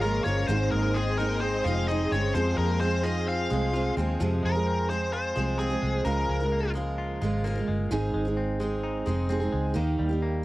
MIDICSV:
0, 0, Header, 1, 7, 480
1, 0, Start_track
1, 0, Key_signature, -4, "minor"
1, 0, Tempo, 463320
1, 511, Time_signature, 4, 2, 24, 8
1, 10824, End_track
2, 0, Start_track
2, 0, Title_t, "String machine"
2, 0, Program_c, 0, 50
2, 0, Note_on_c, 0, 68, 81
2, 0, Note_on_c, 0, 73, 71
2, 0, Note_on_c, 0, 77, 69
2, 0, Note_on_c, 0, 82, 92
2, 478, Note_off_c, 0, 73, 0
2, 479, Note_off_c, 0, 77, 0
2, 480, Note_off_c, 0, 68, 0
2, 482, Note_off_c, 0, 82, 0
2, 497, Note_on_c, 0, 68, 73
2, 503, Note_on_c, 0, 84, 86
2, 505, Note_on_c, 0, 75, 78
2, 507, Note_on_c, 0, 72, 73
2, 2408, Note_off_c, 0, 84, 0
2, 2409, Note_off_c, 0, 75, 0
2, 2428, Note_on_c, 0, 84, 87
2, 2433, Note_on_c, 0, 77, 72
2, 4307, Note_off_c, 0, 68, 0
2, 4312, Note_off_c, 0, 72, 0
2, 4332, Note_off_c, 0, 84, 0
2, 4334, Note_off_c, 0, 77, 0
2, 10824, End_track
3, 0, Start_track
3, 0, Title_t, "Lead electric guitar"
3, 0, Program_c, 1, 29
3, 15, Note_on_c, 1, 70, 92
3, 245, Note_off_c, 1, 70, 0
3, 250, Note_on_c, 1, 73, 97
3, 489, Note_off_c, 1, 73, 0
3, 493, Note_on_c, 1, 72, 110
3, 737, Note_off_c, 1, 72, 0
3, 741, Note_on_c, 1, 70, 96
3, 977, Note_on_c, 1, 68, 82
3, 993, Note_off_c, 1, 70, 0
3, 1207, Note_off_c, 1, 68, 0
3, 1218, Note_on_c, 1, 70, 91
3, 1456, Note_off_c, 1, 70, 0
3, 1461, Note_on_c, 1, 72, 102
3, 1700, Note_on_c, 1, 77, 79
3, 1713, Note_off_c, 1, 72, 0
3, 1944, Note_off_c, 1, 77, 0
3, 1949, Note_on_c, 1, 75, 92
3, 2173, Note_off_c, 1, 75, 0
3, 2198, Note_on_c, 1, 73, 91
3, 2418, Note_off_c, 1, 73, 0
3, 2433, Note_on_c, 1, 72, 105
3, 2666, Note_off_c, 1, 72, 0
3, 2670, Note_on_c, 1, 70, 82
3, 2903, Note_off_c, 1, 70, 0
3, 2907, Note_on_c, 1, 72, 85
3, 3143, Note_on_c, 1, 75, 89
3, 3157, Note_off_c, 1, 72, 0
3, 3395, Note_off_c, 1, 75, 0
3, 3403, Note_on_c, 1, 77, 82
3, 4076, Note_off_c, 1, 77, 0
3, 4615, Note_on_c, 1, 70, 96
3, 5070, Note_off_c, 1, 70, 0
3, 5074, Note_on_c, 1, 72, 100
3, 5297, Note_off_c, 1, 72, 0
3, 5318, Note_on_c, 1, 72, 106
3, 5763, Note_off_c, 1, 72, 0
3, 5790, Note_on_c, 1, 68, 89
3, 6239, Note_off_c, 1, 68, 0
3, 6266, Note_on_c, 1, 70, 83
3, 6949, Note_off_c, 1, 70, 0
3, 10824, End_track
4, 0, Start_track
4, 0, Title_t, "Vibraphone"
4, 0, Program_c, 2, 11
4, 20, Note_on_c, 2, 58, 77
4, 248, Note_off_c, 2, 58, 0
4, 256, Note_on_c, 2, 61, 75
4, 486, Note_off_c, 2, 61, 0
4, 493, Note_on_c, 2, 60, 81
4, 724, Note_off_c, 2, 60, 0
4, 731, Note_on_c, 2, 58, 80
4, 963, Note_off_c, 2, 58, 0
4, 970, Note_on_c, 2, 56, 80
4, 1203, Note_off_c, 2, 56, 0
4, 1209, Note_on_c, 2, 58, 80
4, 1443, Note_off_c, 2, 58, 0
4, 1454, Note_on_c, 2, 60, 81
4, 1685, Note_off_c, 2, 60, 0
4, 1700, Note_on_c, 2, 65, 82
4, 1928, Note_off_c, 2, 65, 0
4, 1955, Note_on_c, 2, 63, 83
4, 2177, Note_off_c, 2, 63, 0
4, 2184, Note_on_c, 2, 61, 79
4, 2410, Note_off_c, 2, 61, 0
4, 2428, Note_on_c, 2, 60, 83
4, 2652, Note_on_c, 2, 58, 72
4, 2653, Note_off_c, 2, 60, 0
4, 2884, Note_off_c, 2, 58, 0
4, 2910, Note_on_c, 2, 60, 79
4, 3134, Note_off_c, 2, 60, 0
4, 3167, Note_on_c, 2, 63, 79
4, 3383, Note_off_c, 2, 63, 0
4, 3399, Note_on_c, 2, 65, 74
4, 4075, Note_off_c, 2, 65, 0
4, 4624, Note_on_c, 2, 82, 81
4, 5056, Note_off_c, 2, 82, 0
4, 5080, Note_on_c, 2, 84, 85
4, 5300, Note_off_c, 2, 84, 0
4, 5316, Note_on_c, 2, 84, 94
4, 5762, Note_off_c, 2, 84, 0
4, 5791, Note_on_c, 2, 80, 75
4, 6239, Note_off_c, 2, 80, 0
4, 6270, Note_on_c, 2, 82, 72
4, 6951, Note_off_c, 2, 82, 0
4, 10824, End_track
5, 0, Start_track
5, 0, Title_t, "Steel-string acoustic guitar"
5, 0, Program_c, 3, 25
5, 19, Note_on_c, 3, 53, 62
5, 34, Note_on_c, 3, 56, 67
5, 44, Note_on_c, 3, 65, 63
5, 60, Note_on_c, 3, 70, 65
5, 251, Note_off_c, 3, 53, 0
5, 264, Note_on_c, 3, 53, 64
5, 265, Note_off_c, 3, 56, 0
5, 277, Note_off_c, 3, 65, 0
5, 278, Note_on_c, 3, 56, 67
5, 285, Note_off_c, 3, 70, 0
5, 290, Note_on_c, 3, 65, 59
5, 296, Note_on_c, 3, 70, 72
5, 501, Note_on_c, 3, 44, 82
5, 502, Note_off_c, 3, 56, 0
5, 506, Note_on_c, 3, 51, 86
5, 507, Note_off_c, 3, 53, 0
5, 515, Note_on_c, 3, 56, 94
5, 516, Note_off_c, 3, 65, 0
5, 517, Note_on_c, 3, 60, 81
5, 520, Note_on_c, 3, 63, 84
5, 523, Note_off_c, 3, 70, 0
5, 527, Note_on_c, 3, 68, 80
5, 978, Note_off_c, 3, 56, 0
5, 982, Note_on_c, 3, 56, 58
5, 986, Note_off_c, 3, 44, 0
5, 989, Note_off_c, 3, 51, 0
5, 995, Note_off_c, 3, 60, 0
5, 996, Note_off_c, 3, 63, 0
5, 999, Note_on_c, 3, 60, 58
5, 1008, Note_off_c, 3, 68, 0
5, 1008, Note_on_c, 3, 63, 64
5, 1013, Note_on_c, 3, 68, 67
5, 1218, Note_off_c, 3, 56, 0
5, 1230, Note_off_c, 3, 60, 0
5, 1230, Note_on_c, 3, 56, 57
5, 1235, Note_off_c, 3, 63, 0
5, 1242, Note_off_c, 3, 68, 0
5, 1242, Note_on_c, 3, 60, 63
5, 1247, Note_on_c, 3, 63, 69
5, 1259, Note_on_c, 3, 68, 67
5, 1703, Note_off_c, 3, 56, 0
5, 1707, Note_on_c, 3, 56, 67
5, 1719, Note_off_c, 3, 63, 0
5, 1721, Note_off_c, 3, 60, 0
5, 1725, Note_on_c, 3, 60, 71
5, 1733, Note_on_c, 3, 63, 73
5, 1736, Note_off_c, 3, 68, 0
5, 1741, Note_on_c, 3, 68, 78
5, 1939, Note_off_c, 3, 56, 0
5, 1952, Note_on_c, 3, 56, 62
5, 1954, Note_off_c, 3, 60, 0
5, 1962, Note_off_c, 3, 63, 0
5, 1966, Note_off_c, 3, 68, 0
5, 1966, Note_on_c, 3, 60, 69
5, 1974, Note_on_c, 3, 63, 73
5, 1981, Note_on_c, 3, 68, 68
5, 2188, Note_off_c, 3, 56, 0
5, 2199, Note_off_c, 3, 60, 0
5, 2201, Note_on_c, 3, 56, 62
5, 2203, Note_off_c, 3, 63, 0
5, 2206, Note_off_c, 3, 68, 0
5, 2216, Note_on_c, 3, 60, 66
5, 2225, Note_on_c, 3, 63, 57
5, 2233, Note_on_c, 3, 68, 69
5, 2429, Note_off_c, 3, 56, 0
5, 2431, Note_on_c, 3, 41, 79
5, 2437, Note_off_c, 3, 60, 0
5, 2438, Note_on_c, 3, 48, 84
5, 2439, Note_on_c, 3, 53, 71
5, 2441, Note_on_c, 3, 56, 82
5, 2444, Note_off_c, 3, 68, 0
5, 2447, Note_off_c, 3, 63, 0
5, 2451, Note_on_c, 3, 60, 89
5, 2456, Note_on_c, 3, 68, 79
5, 2898, Note_off_c, 3, 53, 0
5, 2902, Note_on_c, 3, 53, 59
5, 2911, Note_off_c, 3, 41, 0
5, 2915, Note_off_c, 3, 48, 0
5, 2915, Note_off_c, 3, 56, 0
5, 2919, Note_on_c, 3, 56, 60
5, 2925, Note_off_c, 3, 60, 0
5, 2929, Note_on_c, 3, 60, 66
5, 2932, Note_off_c, 3, 68, 0
5, 2936, Note_on_c, 3, 68, 67
5, 3133, Note_off_c, 3, 53, 0
5, 3146, Note_on_c, 3, 53, 64
5, 3149, Note_off_c, 3, 56, 0
5, 3156, Note_off_c, 3, 60, 0
5, 3161, Note_on_c, 3, 56, 59
5, 3164, Note_off_c, 3, 68, 0
5, 3168, Note_on_c, 3, 60, 62
5, 3177, Note_on_c, 3, 68, 69
5, 3623, Note_off_c, 3, 53, 0
5, 3627, Note_on_c, 3, 53, 66
5, 3634, Note_off_c, 3, 56, 0
5, 3639, Note_on_c, 3, 56, 66
5, 3649, Note_off_c, 3, 60, 0
5, 3653, Note_on_c, 3, 60, 64
5, 3654, Note_off_c, 3, 68, 0
5, 3659, Note_on_c, 3, 68, 78
5, 3853, Note_off_c, 3, 53, 0
5, 3863, Note_off_c, 3, 56, 0
5, 3866, Note_on_c, 3, 53, 59
5, 3875, Note_on_c, 3, 56, 65
5, 3878, Note_off_c, 3, 60, 0
5, 3885, Note_off_c, 3, 68, 0
5, 3890, Note_on_c, 3, 60, 71
5, 3900, Note_on_c, 3, 68, 69
5, 4101, Note_off_c, 3, 53, 0
5, 4113, Note_on_c, 3, 53, 65
5, 4114, Note_off_c, 3, 56, 0
5, 4121, Note_off_c, 3, 60, 0
5, 4124, Note_on_c, 3, 56, 70
5, 4126, Note_off_c, 3, 68, 0
5, 4136, Note_on_c, 3, 60, 75
5, 4148, Note_on_c, 3, 68, 76
5, 4346, Note_off_c, 3, 53, 0
5, 4351, Note_on_c, 3, 41, 84
5, 4355, Note_off_c, 3, 56, 0
5, 4358, Note_on_c, 3, 48, 86
5, 4358, Note_on_c, 3, 53, 80
5, 4361, Note_off_c, 3, 60, 0
5, 4361, Note_off_c, 3, 68, 0
5, 4367, Note_on_c, 3, 56, 94
5, 4374, Note_on_c, 3, 60, 88
5, 4374, Note_on_c, 3, 68, 90
5, 4696, Note_off_c, 3, 68, 0
5, 4708, Note_off_c, 3, 60, 0
5, 4709, Note_on_c, 3, 68, 52
5, 4712, Note_off_c, 3, 41, 0
5, 4715, Note_off_c, 3, 53, 0
5, 4716, Note_off_c, 3, 48, 0
5, 4720, Note_off_c, 3, 56, 0
5, 4721, Note_on_c, 3, 60, 46
5, 4734, Note_on_c, 3, 56, 46
5, 4743, Note_on_c, 3, 53, 42
5, 5068, Note_off_c, 3, 53, 0
5, 5071, Note_off_c, 3, 68, 0
5, 5075, Note_off_c, 3, 56, 0
5, 5077, Note_off_c, 3, 60, 0
5, 5081, Note_on_c, 3, 53, 67
5, 5088, Note_on_c, 3, 56, 66
5, 5103, Note_on_c, 3, 60, 66
5, 5110, Note_on_c, 3, 68, 69
5, 5545, Note_off_c, 3, 53, 0
5, 5550, Note_on_c, 3, 53, 66
5, 5560, Note_off_c, 3, 56, 0
5, 5562, Note_off_c, 3, 60, 0
5, 5564, Note_on_c, 3, 56, 66
5, 5574, Note_on_c, 3, 60, 68
5, 5581, Note_off_c, 3, 68, 0
5, 5585, Note_on_c, 3, 68, 71
5, 5775, Note_off_c, 3, 53, 0
5, 5788, Note_on_c, 3, 53, 59
5, 5792, Note_off_c, 3, 56, 0
5, 5799, Note_off_c, 3, 60, 0
5, 5805, Note_on_c, 3, 56, 58
5, 5810, Note_off_c, 3, 68, 0
5, 5812, Note_on_c, 3, 60, 73
5, 5821, Note_on_c, 3, 68, 65
5, 5893, Note_off_c, 3, 68, 0
5, 5905, Note_on_c, 3, 68, 60
5, 5906, Note_off_c, 3, 60, 0
5, 5911, Note_off_c, 3, 53, 0
5, 5913, Note_off_c, 3, 56, 0
5, 5918, Note_on_c, 3, 60, 52
5, 5925, Note_on_c, 3, 56, 48
5, 5936, Note_on_c, 3, 53, 46
5, 6261, Note_off_c, 3, 53, 0
5, 6265, Note_off_c, 3, 56, 0
5, 6266, Note_on_c, 3, 49, 74
5, 6270, Note_off_c, 3, 68, 0
5, 6273, Note_on_c, 3, 53, 69
5, 6276, Note_off_c, 3, 60, 0
5, 6278, Note_on_c, 3, 56, 75
5, 6285, Note_on_c, 3, 65, 73
5, 6289, Note_on_c, 3, 70, 81
5, 6620, Note_off_c, 3, 70, 0
5, 6630, Note_off_c, 3, 49, 0
5, 6633, Note_on_c, 3, 70, 58
5, 6634, Note_off_c, 3, 53, 0
5, 6636, Note_off_c, 3, 56, 0
5, 6637, Note_off_c, 3, 65, 0
5, 6649, Note_on_c, 3, 65, 47
5, 6665, Note_on_c, 3, 56, 45
5, 6980, Note_on_c, 3, 53, 70
5, 6985, Note_off_c, 3, 56, 0
5, 6994, Note_off_c, 3, 70, 0
5, 6995, Note_off_c, 3, 65, 0
5, 6997, Note_on_c, 3, 56, 66
5, 7007, Note_on_c, 3, 65, 66
5, 7015, Note_on_c, 3, 70, 76
5, 7463, Note_off_c, 3, 53, 0
5, 7475, Note_on_c, 3, 53, 76
5, 7481, Note_off_c, 3, 65, 0
5, 7485, Note_off_c, 3, 70, 0
5, 7488, Note_off_c, 3, 56, 0
5, 7492, Note_on_c, 3, 56, 74
5, 7499, Note_on_c, 3, 65, 72
5, 7507, Note_on_c, 3, 70, 81
5, 7696, Note_off_c, 3, 53, 0
5, 7708, Note_on_c, 3, 53, 68
5, 7709, Note_off_c, 3, 56, 0
5, 7719, Note_off_c, 3, 65, 0
5, 7721, Note_on_c, 3, 56, 70
5, 7728, Note_off_c, 3, 70, 0
5, 7731, Note_on_c, 3, 65, 77
5, 7741, Note_on_c, 3, 70, 75
5, 7813, Note_off_c, 3, 70, 0
5, 7825, Note_on_c, 3, 70, 67
5, 7832, Note_off_c, 3, 53, 0
5, 7836, Note_off_c, 3, 65, 0
5, 7838, Note_off_c, 3, 56, 0
5, 7848, Note_on_c, 3, 65, 49
5, 7864, Note_on_c, 3, 56, 49
5, 8189, Note_off_c, 3, 56, 0
5, 8190, Note_off_c, 3, 70, 0
5, 8192, Note_on_c, 3, 44, 83
5, 8195, Note_on_c, 3, 51, 97
5, 8201, Note_on_c, 3, 56, 90
5, 8202, Note_off_c, 3, 65, 0
5, 8205, Note_on_c, 3, 60, 84
5, 8206, Note_on_c, 3, 63, 103
5, 8213, Note_on_c, 3, 68, 94
5, 8533, Note_off_c, 3, 68, 0
5, 8546, Note_on_c, 3, 68, 65
5, 8552, Note_off_c, 3, 63, 0
5, 8553, Note_off_c, 3, 44, 0
5, 8555, Note_off_c, 3, 51, 0
5, 8558, Note_off_c, 3, 56, 0
5, 8560, Note_off_c, 3, 60, 0
5, 8564, Note_on_c, 3, 63, 55
5, 8574, Note_on_c, 3, 60, 53
5, 8579, Note_on_c, 3, 56, 52
5, 8894, Note_off_c, 3, 56, 0
5, 8907, Note_on_c, 3, 56, 74
5, 8910, Note_off_c, 3, 60, 0
5, 8910, Note_off_c, 3, 68, 0
5, 8920, Note_off_c, 3, 63, 0
5, 8922, Note_on_c, 3, 60, 81
5, 8931, Note_on_c, 3, 63, 73
5, 8942, Note_on_c, 3, 68, 77
5, 9370, Note_off_c, 3, 56, 0
5, 9382, Note_on_c, 3, 56, 75
5, 9383, Note_off_c, 3, 60, 0
5, 9396, Note_on_c, 3, 60, 75
5, 9401, Note_off_c, 3, 68, 0
5, 9404, Note_off_c, 3, 63, 0
5, 9408, Note_on_c, 3, 63, 82
5, 9414, Note_on_c, 3, 68, 80
5, 9611, Note_off_c, 3, 56, 0
5, 9623, Note_off_c, 3, 60, 0
5, 9623, Note_on_c, 3, 56, 64
5, 9628, Note_off_c, 3, 63, 0
5, 9635, Note_on_c, 3, 60, 81
5, 9640, Note_on_c, 3, 63, 79
5, 9644, Note_off_c, 3, 68, 0
5, 9656, Note_on_c, 3, 68, 81
5, 9725, Note_off_c, 3, 68, 0
5, 9737, Note_on_c, 3, 68, 63
5, 9740, Note_off_c, 3, 63, 0
5, 9749, Note_off_c, 3, 56, 0
5, 9751, Note_off_c, 3, 60, 0
5, 9753, Note_on_c, 3, 63, 51
5, 9764, Note_on_c, 3, 60, 48
5, 9773, Note_on_c, 3, 56, 48
5, 10085, Note_off_c, 3, 56, 0
5, 10089, Note_on_c, 3, 51, 89
5, 10094, Note_off_c, 3, 60, 0
5, 10094, Note_off_c, 3, 63, 0
5, 10098, Note_on_c, 3, 58, 94
5, 10105, Note_off_c, 3, 68, 0
5, 10107, Note_on_c, 3, 63, 92
5, 10112, Note_on_c, 3, 67, 85
5, 10441, Note_off_c, 3, 67, 0
5, 10454, Note_on_c, 3, 67, 58
5, 10460, Note_off_c, 3, 63, 0
5, 10461, Note_off_c, 3, 51, 0
5, 10466, Note_off_c, 3, 58, 0
5, 10472, Note_on_c, 3, 63, 58
5, 10491, Note_on_c, 3, 58, 51
5, 10811, Note_off_c, 3, 58, 0
5, 10817, Note_off_c, 3, 63, 0
5, 10824, Note_off_c, 3, 67, 0
5, 10824, End_track
6, 0, Start_track
6, 0, Title_t, "Clean electric guitar"
6, 0, Program_c, 4, 27
6, 0, Note_on_c, 4, 49, 71
6, 0, Note_on_c, 4, 56, 66
6, 0, Note_on_c, 4, 58, 66
6, 27, Note_on_c, 4, 65, 71
6, 255, Note_off_c, 4, 58, 0
6, 268, Note_on_c, 4, 58, 63
6, 507, Note_off_c, 4, 49, 0
6, 511, Note_on_c, 4, 44, 84
6, 557, Note_off_c, 4, 58, 0
6, 557, Note_off_c, 4, 65, 0
6, 744, Note_off_c, 4, 56, 0
6, 749, Note_on_c, 4, 56, 64
6, 993, Note_on_c, 4, 60, 66
6, 1228, Note_on_c, 4, 63, 71
6, 1465, Note_off_c, 4, 60, 0
6, 1470, Note_on_c, 4, 60, 70
6, 1708, Note_off_c, 4, 56, 0
6, 1712, Note_on_c, 4, 56, 65
6, 1936, Note_off_c, 4, 63, 0
6, 1948, Note_on_c, 4, 63, 75
6, 2184, Note_off_c, 4, 60, 0
6, 2189, Note_on_c, 4, 60, 66
6, 2425, Note_on_c, 4, 53, 77
6, 2432, Note_off_c, 4, 44, 0
6, 2478, Note_off_c, 4, 63, 0
6, 2657, Note_off_c, 4, 56, 0
6, 2661, Note_on_c, 4, 56, 59
6, 2898, Note_off_c, 4, 60, 0
6, 2902, Note_on_c, 4, 60, 65
6, 3148, Note_on_c, 4, 65, 64
6, 3381, Note_off_c, 4, 60, 0
6, 3385, Note_on_c, 4, 60, 72
6, 3625, Note_off_c, 4, 56, 0
6, 3629, Note_on_c, 4, 56, 61
6, 3864, Note_off_c, 4, 65, 0
6, 3868, Note_on_c, 4, 65, 72
6, 4110, Note_off_c, 4, 60, 0
6, 4114, Note_on_c, 4, 60, 59
6, 4351, Note_off_c, 4, 53, 0
6, 4355, Note_on_c, 4, 53, 77
6, 4401, Note_off_c, 4, 60, 0
6, 4584, Note_off_c, 4, 56, 0
6, 4588, Note_on_c, 4, 56, 59
6, 4831, Note_on_c, 4, 60, 60
6, 5070, Note_off_c, 4, 56, 0
6, 5074, Note_on_c, 4, 56, 56
6, 5311, Note_off_c, 4, 65, 0
6, 5316, Note_on_c, 4, 65, 74
6, 5547, Note_off_c, 4, 56, 0
6, 5551, Note_on_c, 4, 56, 65
6, 5779, Note_off_c, 4, 60, 0
6, 5792, Note_on_c, 4, 60, 62
6, 6026, Note_off_c, 4, 56, 0
6, 6030, Note_on_c, 4, 56, 61
6, 6269, Note_off_c, 4, 53, 0
6, 6273, Note_on_c, 4, 49, 79
6, 6321, Note_off_c, 4, 60, 0
6, 6323, Note_off_c, 4, 65, 0
6, 6515, Note_off_c, 4, 56, 0
6, 6519, Note_on_c, 4, 56, 59
6, 6757, Note_on_c, 4, 58, 66
6, 6989, Note_off_c, 4, 56, 0
6, 6993, Note_on_c, 4, 56, 58
6, 7234, Note_on_c, 4, 65, 73
6, 7470, Note_off_c, 4, 56, 0
6, 7475, Note_on_c, 4, 56, 64
6, 7698, Note_off_c, 4, 58, 0
6, 7710, Note_on_c, 4, 58, 68
6, 7948, Note_off_c, 4, 56, 0
6, 7952, Note_on_c, 4, 56, 63
6, 8192, Note_on_c, 4, 44, 77
6, 8195, Note_off_c, 4, 49, 0
6, 8241, Note_off_c, 4, 58, 0
6, 8242, Note_off_c, 4, 56, 0
6, 8242, Note_off_c, 4, 65, 0
6, 8432, Note_on_c, 4, 56, 61
6, 8669, Note_on_c, 4, 60, 69
6, 8898, Note_off_c, 4, 56, 0
6, 8910, Note_on_c, 4, 56, 65
6, 9152, Note_on_c, 4, 63, 73
6, 9375, Note_off_c, 4, 56, 0
6, 9388, Note_on_c, 4, 56, 63
6, 9617, Note_off_c, 4, 60, 0
6, 9630, Note_on_c, 4, 60, 67
6, 9853, Note_off_c, 4, 56, 0
6, 9866, Note_on_c, 4, 56, 65
6, 10112, Note_on_c, 4, 51, 75
6, 10113, Note_off_c, 4, 44, 0
6, 10158, Note_off_c, 4, 56, 0
6, 10160, Note_off_c, 4, 60, 0
6, 10161, Note_off_c, 4, 63, 0
6, 10350, Note_on_c, 4, 55, 57
6, 10591, Note_on_c, 4, 58, 64
6, 10817, Note_off_c, 4, 55, 0
6, 10824, Note_off_c, 4, 51, 0
6, 10824, Note_off_c, 4, 58, 0
6, 10824, End_track
7, 0, Start_track
7, 0, Title_t, "Fingered electric bass"
7, 0, Program_c, 5, 33
7, 0, Note_on_c, 5, 32, 103
7, 197, Note_off_c, 5, 32, 0
7, 269, Note_on_c, 5, 31, 88
7, 473, Note_off_c, 5, 31, 0
7, 506, Note_on_c, 5, 32, 117
7, 712, Note_off_c, 5, 32, 0
7, 757, Note_on_c, 5, 32, 103
7, 1673, Note_off_c, 5, 32, 0
7, 1716, Note_on_c, 5, 29, 98
7, 2122, Note_off_c, 5, 29, 0
7, 2194, Note_on_c, 5, 31, 83
7, 2397, Note_off_c, 5, 31, 0
7, 2436, Note_on_c, 5, 41, 117
7, 2638, Note_off_c, 5, 41, 0
7, 2670, Note_on_c, 5, 41, 96
7, 3590, Note_off_c, 5, 41, 0
7, 3640, Note_on_c, 5, 36, 96
7, 4045, Note_off_c, 5, 36, 0
7, 4113, Note_on_c, 5, 39, 91
7, 4317, Note_off_c, 5, 39, 0
7, 4359, Note_on_c, 5, 41, 111
7, 4560, Note_off_c, 5, 41, 0
7, 4601, Note_on_c, 5, 41, 99
7, 5516, Note_off_c, 5, 41, 0
7, 5561, Note_on_c, 5, 36, 86
7, 5966, Note_off_c, 5, 36, 0
7, 6038, Note_on_c, 5, 36, 84
7, 6240, Note_off_c, 5, 36, 0
7, 6275, Note_on_c, 5, 37, 111
7, 6479, Note_off_c, 5, 37, 0
7, 6515, Note_on_c, 5, 37, 92
7, 7434, Note_off_c, 5, 37, 0
7, 7480, Note_on_c, 5, 32, 99
7, 7886, Note_off_c, 5, 32, 0
7, 7961, Note_on_c, 5, 31, 80
7, 8162, Note_off_c, 5, 31, 0
7, 8202, Note_on_c, 5, 32, 106
7, 8403, Note_off_c, 5, 32, 0
7, 8431, Note_on_c, 5, 32, 101
7, 9351, Note_off_c, 5, 32, 0
7, 9397, Note_on_c, 5, 29, 90
7, 9804, Note_off_c, 5, 29, 0
7, 9876, Note_on_c, 5, 37, 83
7, 10079, Note_off_c, 5, 37, 0
7, 10109, Note_on_c, 5, 39, 119
7, 10315, Note_off_c, 5, 39, 0
7, 10354, Note_on_c, 5, 39, 101
7, 10824, Note_off_c, 5, 39, 0
7, 10824, End_track
0, 0, End_of_file